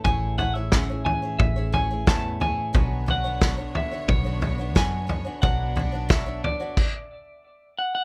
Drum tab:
CC |--------|--------|----x---|
SD |--o---o-|--o---o-|--o-----|
FT |oooooooo|oooooooo|oooo----|
BD |o-o-o-o-|o-o-o-o-|o-o-o---|